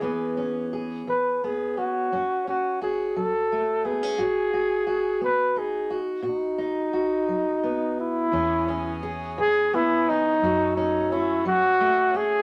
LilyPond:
<<
  \new Staff \with { instrumentName = "Flugelhorn" } { \time 6/8 \key e \major \tempo 4. = 58 gis'4 r8 b'8 gis'8 fis'8~ | fis'8 fis'8 gis'8 a'4 gis'8~ | gis'4. b'8 gis'8 r8 | dis'2~ dis'8 e'8~ |
e'4 r8 gis'8 e'8 dis'8~ | dis'8 dis'8 e'8 fis'4 gis'8 | }
  \new Staff \with { instrumentName = "Harmonium" } { \time 6/8 \key e \major r2. | r2. | r2. | r2. |
<e b cis' fis' gis'>2. | <a cis' fis'>2. | }
  \new Staff \with { instrumentName = "Steel-string acoustic guitar" } { \time 6/8 \key e \major << { <e b cis'>8 cis'8 gis'4 b8 cis'8 | cis'8 cis'8 fis'4 a8 b16 cis'16 | fis'8 fis'8 fis'4 dis'8 fis'8 | fis'8 dis'8 fis'4 b4 |
cis'8 cis'8 gis'4 b8 cis'8 | fis'8 cis'8 cis'4 a8 cis'8 | } \\ { e,4 r8 e4 r8 | fis,4 r8 fis4 r8 | gis,4 r8 b4 r8 | b,4 r8 fis4 r8 |
e,4 r8 e4 r8 | fis,4 r8 fis4 r8 | } >> }
  \new Staff \with { instrumentName = "Fretless electric bass" } { \clef bass \time 6/8 \key e \major r2. | r2. | r2. | r2. |
e,2. | fis,2. | }
>>